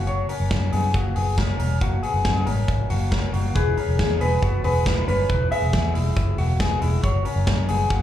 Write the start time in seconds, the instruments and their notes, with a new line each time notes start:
Already playing: fingered electric bass F#1
0.07 clean electric guitar F#4 C#5, closed hi-hat
0.29 clean electric guitar C#4 A#4, open hi-hat
0.40 fingered electric bass F#1
0.51 fingered electric bass F#2, kick, snare, closed hi-hat
0.72 fingered electric bass F#2, clean electric guitar B3 G#4, open hi-hat
0.94 fingered electric bass F#1, clean electric guitar A#3 F#4, kick, closed hi-hat
1.16 fingered electric bass F#1, clean electric guitar B3 G#4, open hi-hat
1.38 clean electric guitar C#4 A#4, kick, snare, closed hi-hat
1.59 fingered electric bass E1, clean electric guitar C#4 A#4, open hi-hat
1.81 fingered electric bass F#1, clean electric guitar A#3 F#4, kick, closed hi-hat
2.03 clean electric guitar B3 G#4, open hi-hat
2.14 fingered electric bass F#1
2.25 fingered electric bass F#2, kick, snare, closed hi-hat
2.46 fingered electric bass G#1, clean electric guitar C#4 A#4, open hi-hat
2.68 fingered electric bass G#1, kick, closed hi-hat
2.90 fingered electric bass F#1, clean electric guitar A#3 F#4, open hi-hat
3.11 clean electric guitar C#4 A#4, kick, snare
3.33 fingered electric bass F#1, clean electric guitar A#3 F#4, open hi-hat
3.55 fingered electric bass E1, clean electric guitar E4 G#4 B4, kick, closed hi-hat
3.77 clean electric guitar C#4 A#4, open hi-hat
3.88 fingered electric bass E1
3.99 fingered electric bass E2, clean electric guitar G#4, kick, snare, closed hi-hat
4.20 fingered electric bass E1, clean electric guitar B3 G#4 B4, open hi-hat
4.42 fingered electric bass F#1, clean electric guitar B3 F#4, kick, closed hi-hat
4.64 fingered electric bass E1, clean electric guitar B3 G#4 B4, open hi-hat
4.86 clean electric guitar E4 A#4, kick, snare, closed hi-hat
5.08 fingered electric bass F#1, clean electric guitar C#4 A#4 B4, open hi-hat
5.29 fingered electric bass E1, clean electric guitar E4 B4, kick, closed hi-hat
5.51 clean electric guitar B3 G#4 E5, open hi-hat
5.62 fingered electric bass E1
5.73 fingered electric bass E2, kick, snare, closed hi-hat
5.94 fingered electric bass E1, clean electric guitar G#3 E4, open hi-hat
6.16 fingered electric bass F#1, kick, closed hi-hat
6.38 fingered electric bass E1, clean electric guitar A#3 F#4, open hi-hat
6.60 clean electric guitar B3 G#4, kick, snare, closed hi-hat
6.82 fingered electric bass E1, clean electric guitar G#3 E4, open hi-hat
7.03 fingered electric bass F#1, clean electric guitar F#4 C#5, kick, closed hi-hat
7.25 clean electric guitar C#4 A#4, open hi-hat
7.36 fingered electric bass F#1
7.47 fingered electric bass F#2, kick, snare, closed hi-hat
7.68 fingered electric bass F#1, clean electric guitar B3 G#4, open hi-hat
7.90 fingered electric bass F#1, clean electric guitar A#3 F#4, kick, closed hi-hat